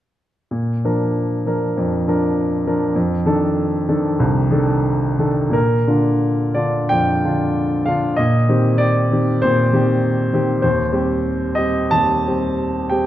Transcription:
0.51 A#2
0.85 F3 D4 A#4
1.46 F3 D4 A#4
1.77 F2
2.08 F3 D4 A#4
2.67 F3 D4 A#4
2.96 F2
3.26 D#3 D4 A4
3.88 D#3 D4 A4
4.20 C2
4.51 D#3 D4 A4
5.18 D#3 D4 A4
5.50 A#2 A#4
5.87 D3 D4 F4
6.54 D3 D4 F4 D5
6.89 F2 G5
7.24 D3 D4 F4
7.86 D3 D4 F4 F5
8.16 A#2 D#5
8.49 D#3 C4 G4
8.78 D5
9.11 D#3 C4 G4
9.42 A#2 C5
9.73 D#3 C4 G4
10.33 D#3 C4 G4
10.62 D#2 C5
10.92 G3 C4 G4
11.55 G3 C4 G4 D#5
11.91 D#2 A5
12.28 G3 C4 G4
12.90 G3 C4 G4 G5

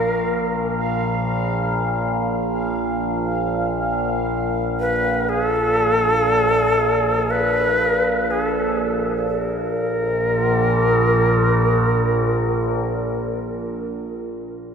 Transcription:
Already playing: A#1 A#2 A#4 F5
4.80 B4
5.29 G#4
5.44 A4
7.30 B4
8.30 G#4
8.42 A4
9.28 A#1 A#2 A#4

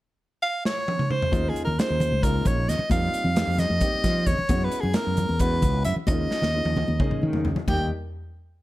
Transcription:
0.43 F5
0.65 C#5, snare
0.88 high tom
0.99 mid tom
1.10 C5, mid tom
1.22 floor tom
1.32 D#2 G#3 A#3 C#4 D#4 F4, kick, closed hi-hat, high conga
1.45 low conga
1.49 G#4
1.56 muted fretless electric bass stroke, closed hi-hat
1.65 D#2 A#4, low conga
1.78 G#3 A#3 C#4 D#4 F4 C5, snare, closed hi-hat, low conga
1.90 D#2
2.00 closed hi-hat, low conga
2.12 C#2, high conga
2.23 G#3 A#3 C#4 D#4 F4 A#4, kick, closed hi-hat
2.45 A#1 C#5, kick, closed hi-hat, low conga
2.57 low conga
2.68 D#2 D#5, snare, closed hi-hat
2.79 low conga
2.90 F2 G3 A#3 C4 D#4 F4 F5, kick, closed hi-hat, high conga
3.13 muted fretless electric bass stroke, closed hi-hat
3.24 F2, low conga
3.35 G3 A#3 C4 D#4 G4, snare, closed hi-hat, low conga
3.47 F2
3.58 D#5, snare, closed hi-hat, low conga
3.70 F2, high conga
3.80 G3 A#3 C4 D#4 G4, kick, closed hi-hat
3.94 muted fretless electric bass stroke
4.04 F3, kick, snare, closed hi-hat, low conga
4.16 low conga
4.26 F2 C#5, kick, closed hi-hat
4.38 low conga
4.49 F#2 G#3 B3 C#4 E4 F#4, kick, closed hi-hat, high conga
4.61 B4, low conga
4.72 muted fretless electric bass stroke, closed hi-hat
4.81 F#2 G#4, low conga
4.94 G#3 B3 C#4 E4 G#4 A#4, snare, closed hi-hat, low conga
5.06 F#2
5.17 closed hi-hat, low conga
5.29 E2, high conga
5.39 G#3 B3 C#4 E4 F#4 B4, kick, closed hi-hat
5.62 C#2, kick, closed hi-hat, low conga
5.74 low conga
5.84 F#2 E5, closed hi-hat
5.96 low conga
6.07 D#2 G#3 A#3 C#4 D#4 F4 D#5, kick, closed hi-hat, high conga
6.31 muted fretless electric bass stroke, snare, low conga
6.42 D#2, snare, low conga
6.54 G#3 A#3 C#4 D#4 F4, low conga
6.65 D#2, high tom
6.77 high tom, low conga
6.88 D#2, high conga
7.00 G#3 A#3 C#4 D#4 G#4, kick, mid tom
7.11 muted fretless electric bass stroke, mid tom, low conga
7.22 D#3 D#5, high conga
7.33 floor tom, high conga
7.45 D#2, floor tom, low conga
7.56 floor tom, low conga
7.68 D#2 D#3 G3 A#3 D#4 G4 G5, kick, floor tom, crash, high conga

